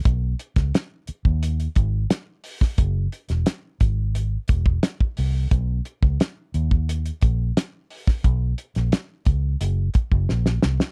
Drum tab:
HH |x-xxx-x-xxx-x-o-|x-xxx-x-x-x-x-o-|x-x-x-x-xxx-x-o-|x-xxx-x-x-x-----|
SD |---oo-------o--o|---oo-------o---|----o-------o--o|---oo-------oooo|
BD |o--o---o--o----o|o-----o---oo-o--|o--o---o--o----o|o-----o---oo----|